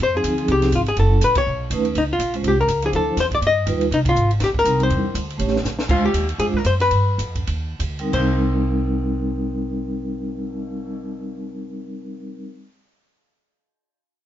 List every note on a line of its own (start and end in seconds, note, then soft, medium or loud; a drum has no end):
0.00 0.23 F2 medium
0.00 0.15 C5 medium
0.15 0.23 F3 medium
0.15 0.23 C4 medium
0.15 0.24 D#4 medium
0.15 0.24 G#4 medium
0.15 0.51 G#4 medium
0.23 0.47 D2 medium
0.23 kick soft
0.23 hi-hat pedal medium
0.23 ride medium
0.38 0.71 F3 medium
0.38 0.71 C4 medium
0.38 0.72 D#4 medium
0.38 0.72 G#4 medium
0.38 ride soft
0.48 0.72 C2 medium
0.48 0.73 G4 medium
0.48 kick soft
0.48 ride medium
0.62 snare soft
0.62 ride soft
0.72 0.96 G#1 medium
0.72 0.80 F4 medium
0.72 kick soft
0.72 hi-hat pedal medium
0.72 ride medium
0.86 0.98 G#4 medium
0.86 ride soft
0.97 1.21 F#1 medium
0.97 1.11 F#3 medium
0.97 1.11 C#4 soft
0.97 1.11 E4 soft
0.97 1.24 A4 medium
0.97 kick soft
0.97 ride medium
1.01 1.12 A4 medium
1.21 1.45 A1 medium
1.21 1.37 B4 medium
1.21 kick soft
1.21 hi-hat pedal medium
1.21 ride medium
1.35 1.83 C#5 medium
1.35 kick medium
1.35 ride medium
1.47 1.70 B1 medium
1.70 1.94 D#2 medium
1.70 1.84 A3 medium
1.70 1.84 C#4 medium
1.70 1.84 D#4 medium
1.70 1.85 B4 medium
1.70 kick soft
1.70 hi-hat pedal medium
1.70 ride medium
1.85 ride soft
1.95 2.18 C#2 medium
1.95 2.03 D#4 medium
1.95 kick soft
1.95 ride medium
2.13 2.34 F4 medium
2.19 2.43 A#1 medium
2.19 kick soft
2.19 hi-hat pedal medium
2.19 ride medium
2.34 2.43 G#3 medium
2.34 2.44 C#4 medium
2.34 2.44 F4 medium
2.34 2.44 C5 medium
2.34 ride soft
2.43 2.67 C2 medium
2.43 kick soft
2.43 ride medium
2.48 2.60 G4 medium
2.61 2.85 A#4 medium
2.68 2.92 C#2 medium
2.68 kick soft
2.68 hi-hat pedal medium
2.68 ride medium
2.82 3.16 F3 medium
2.82 3.17 D4 medium
2.82 3.17 E4 medium
2.82 2.90 G#4 medium
2.82 3.17 C5 medium
2.82 ride soft
2.93 3.16 D2 medium
2.93 3.18 A4 medium
2.93 kick soft
2.93 ride medium
3.17 3.41 E2 medium
3.17 3.25 C5 loud
3.17 kick soft
3.17 snare soft
3.17 hi-hat pedal medium
3.17 ride medium
3.31 3.39 D5 medium
3.31 kick soft
3.31 ride soft
3.41 3.66 G2 medium
3.41 kick soft
3.41 ride medium
3.47 3.81 D#5 loud
3.66 3.90 D#2 medium
3.66 3.79 G3 medium
3.66 3.80 D#4 medium
3.66 3.80 F4 medium
3.66 3.80 B4 medium
3.66 kick soft
3.66 hi-hat pedal medium
3.66 ride medium
3.81 ride soft
3.91 4.14 C2 medium
3.91 3.99 D#4 medium
3.91 kick soft
3.91 ride medium
4.05 4.30 F4 medium
4.05 kick medium
4.05 ride medium
4.15 4.39 G#1 medium
4.15 hi-hat pedal medium
4.31 ride soft
4.40 4.64 A#1 medium
4.40 4.49 G4 medium
4.40 kick soft
4.40 snare soft
4.40 ride medium
4.54 kick medium
4.59 4.82 A#4 loud
4.64 4.89 C2 medium
4.64 4.89 G3 medium
4.64 4.90 C4 medium
4.64 4.90 D#4 medium
4.64 4.90 A#4 medium
4.64 hi-hat pedal medium
4.64 ride medium
4.80 5.37 C5 medium
4.80 ride soft
4.90 5.14 E2 medium
4.90 5.03 G3 medium
4.90 5.03 D4 soft
4.90 5.03 E4 soft
4.90 5.03 A#4 medium
4.90 kick soft
4.90 ride medium
5.14 5.38 D2 medium
5.14 kick soft
5.14 hi-hat pedal medium
5.14 ride medium
5.30 ride soft
5.38 5.63 A1 medium
5.38 5.51 A3 medium
5.38 5.52 C#4 medium
5.38 5.52 G4 medium
5.38 5.52 C#5 medium
5.38 kick soft
5.38 ride medium
5.48 snare soft
5.56 snare soft
5.64 5.87 A#1 medium
5.64 snare soft
5.64 hi-hat pedal medium
5.79 snare medium
5.88 6.12 D2 medium
5.88 6.01 G#3 medium
5.88 6.01 D4 medium
5.88 6.02 F4 medium
5.88 6.04 F4 medium
5.88 6.02 C5 medium
5.88 kick medium
5.88 crash medium
6.05 6.27 G4 medium
6.14 6.38 D#2 medium
6.14 kick soft
6.14 hi-hat pedal medium
6.14 ride medium
6.29 ride soft
6.38 6.52 F2 medium
6.38 6.52 G#3 medium
6.38 6.52 D4 medium
6.38 6.52 F4 soft
6.38 6.45 G#4 medium
6.38 6.53 C5 medium
6.38 kick soft
6.38 ride medium
6.53 6.66 A#4 medium
6.53 muted upright bass stroke soft
6.53 kick soft
6.65 6.90 F#2 medium
6.65 6.73 C5 medium
6.65 kick soft
6.65 hi-hat pedal medium
6.65 ride medium
6.80 7.77 B4 medium
6.80 snare soft
6.80 ride soft
6.91 7.18 G2 medium
6.91 kick soft
6.91 ride medium
7.18 7.47 F2 medium
7.18 kick soft
7.18 hi-hat pedal medium
7.18 ride medium
7.35 kick soft
7.35 ride soft
7.47 7.78 D#2 medium
7.47 kick soft
7.47 ride medium
7.79 8.12 D2 medium
7.79 kick soft
7.79 hi-hat pedal medium
7.79 ride medium
7.99 8.12 G3 medium
7.99 8.13 C4 soft
7.99 8.13 D#4 soft
7.99 8.13 A#4 medium
7.99 ride soft
8.13 12.41 C2 medium
8.13 12.45 G3 medium
8.13 12.45 C4 medium
8.13 12.46 D#4 medium
8.13 12.46 A#4 medium
8.13 12.41 C5 medium
8.13 kick medium
8.13 crash medium
8.34 cymbal swell soft